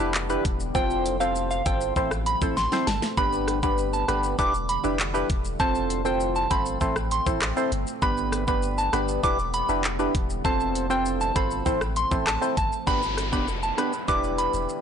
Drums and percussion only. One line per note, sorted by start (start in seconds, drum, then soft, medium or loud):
0.14 clap loud
0.14 shaker medium
0.30 shaker medium
0.45 kick loud
0.45 closed hi-hat medium
0.45 shaker medium
0.60 shaker medium
0.75 kick loud
0.75 shaker medium
0.90 shaker medium
1.06 closed hi-hat medium
1.06 shaker medium
1.21 shaker medium
1.35 shaker medium
1.51 shaker medium
1.66 kick loud
1.66 closed hi-hat medium
1.66 shaker medium
1.81 shaker medium
1.96 kick medium
1.96 shaker medium
2.11 cross-stick loud
2.11 shaker medium
2.26 closed hi-hat medium
2.26 shaker medium
2.42 kick loud
2.42 shaker medium
2.57 snare medium
2.57 shaker medium
2.72 snare medium
2.72 shaker medium
2.87 snare loud
2.87 closed hi-hat medium
2.87 shaker medium
3.02 snare medium
3.02 shaker medium
3.17 kick loud
3.17 shaker medium
3.33 shaker medium
3.48 cross-stick medium
3.48 closed hi-hat medium
3.48 shaker medium
3.63 kick medium
3.63 shaker medium
3.78 shaker medium
3.93 shaker medium
4.08 cross-stick loud
4.08 closed hi-hat medium
4.08 shaker medium
4.23 shaker medium
4.39 kick medium
4.39 shaker medium
4.54 shaker medium
4.69 closed hi-hat medium
4.69 shaker medium
4.84 shaker medium
5.00 clap loud
5.00 shaker medium
5.15 shaker medium
5.30 kick medium
5.30 closed hi-hat medium
5.30 shaker medium
5.45 shaker medium
5.60 kick loud
5.60 shaker medium
5.75 shaker medium
5.90 closed hi-hat medium
5.90 shaker medium
6.05 shaker medium
6.20 shaker medium
6.36 shaker medium
6.51 kick loud
6.51 closed hi-hat medium
6.51 shaker medium
6.66 shaker medium
6.81 kick medium
6.81 shaker medium
6.96 cross-stick loud
6.96 shaker medium
7.11 closed hi-hat medium
7.11 shaker medium
7.26 kick loud
7.26 shaker medium
7.42 cross-stick loud
7.42 clap loud
7.42 shaker medium
7.57 shaker medium
7.72 closed hi-hat medium
7.72 shaker medium
7.87 shaker medium
8.02 kick loud
8.02 shaker medium
8.17 shaker medium
8.32 cross-stick loud
8.32 closed hi-hat medium
8.32 shaker medium
8.48 kick medium
8.48 shaker medium
8.63 shaker medium
8.78 shaker medium
8.93 cross-stick loud
8.93 closed hi-hat medium
8.93 shaker medium
9.08 shaker medium
9.24 kick loud
9.24 shaker medium
9.39 shaker medium
9.54 closed hi-hat medium
9.54 shaker medium
9.69 shaker medium
9.84 clap medium
9.84 shaker medium
9.99 shaker medium
10.15 kick loud
10.15 closed hi-hat medium
10.15 shaker medium
10.30 shaker medium
10.45 kick loud
10.45 shaker medium
10.60 shaker medium
10.75 closed hi-hat medium
10.75 shaker medium
10.90 shaker medium
11.05 shaker medium
11.21 shaker medium
11.36 kick loud
11.36 closed hi-hat medium
11.36 shaker medium
11.51 shaker medium
11.66 kick medium
11.66 shaker medium
11.81 cross-stick loud
11.81 shaker medium
11.96 closed hi-hat medium
11.96 shaker medium
12.11 kick loud
12.11 shaker medium
12.27 cross-stick loud
12.27 clap loud
12.27 shaker medium
12.42 shaker medium
12.57 kick loud
12.57 closed hi-hat medium
12.57 shaker medium
12.72 shaker medium
12.87 kick loud
12.87 shaker medium
13.03 shaker medium
13.17 cross-stick medium
13.17 closed hi-hat medium
13.17 shaker medium
13.33 kick medium
13.33 shaker medium
13.48 shaker medium
13.63 shaker medium
13.78 cross-stick loud
13.78 closed hi-hat medium
13.78 shaker medium
13.93 shaker medium
14.08 kick medium
14.08 shaker medium
14.24 shaker medium
14.38 closed hi-hat medium
14.38 shaker medium
14.54 shaker medium
14.69 shaker medium